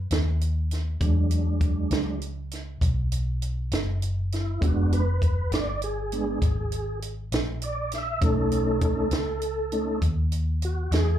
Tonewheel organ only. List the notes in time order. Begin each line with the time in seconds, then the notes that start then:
1.01 F#3 G#3 D4
1.91 F#3 G#3 D4
4.34 E4
4.61 G#3 B3 D4 F#4
4.94 B4
5.24 B4
5.53 D5
5.84 G#4
6.13 G#3 B3 D4
7.64 D5
7.94 E5
8.22 A3 C#4 D#4 A4
8.80 G#4
8.84 A4
9.72 A3 C#4 D#4
10.65 F#4
10.94 G#4